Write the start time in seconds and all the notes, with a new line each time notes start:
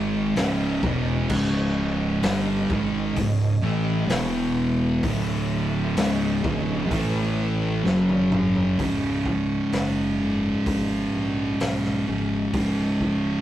Already playing: G#1 G#2 D#3 G#3 D#4 G#4
0.36 C#1 C#2 G#2 C#3 C#4 D#5 G#5, snare, open hi-hat
0.82 E1 E2 B2 E3, kick
1.28 C#1 C#2 G#2 C#3, kick, crash
2.22 G1 G2 D3 G3, snare, open hi-hat
2.70 G#1 G#2 D#3 G#3, kick
3.16 C#1 C#2 G#2, kick, open hi-hat
3.63 A1 A2 E3 A3
4.09 E1 E2 B2 E3 E4 B4 F#5, snare, open hi-hat
5.03 D1 D2 A2 D3 D4 A4 E5, kick, open hi-hat
5.97 C#1 C#2 G#2 C#3 C#4 G#4 D#5, snare, open hi-hat
6.44 D1 D2 A2 D3, kick
6.91 A1 A2 E3 A3 E4 B4, kick, open hi-hat
7.84 F#1 F#2 C#3 F#3 C#4 G#4, snare
8.09 high tom
8.32 mid tom
8.55 floor tom
8.79 C#1 C#2 G#2 C#3 G#3 D#4, kick, open hi-hat
8.83 C#3
9.26 kick
9.72 F#1, snare, open hi-hat
10.20 C#2 G#2 C#3
10.66 G#1, kick, open hi-hat
11.14 A#1
11.60 B1, snare, open hi-hat
11.84 snare
12.07 G#1 C#2 G#2 C#3
12.53 C#1 C#2 G#2, kick, open hi-hat
12.58 C#3
13.01 kick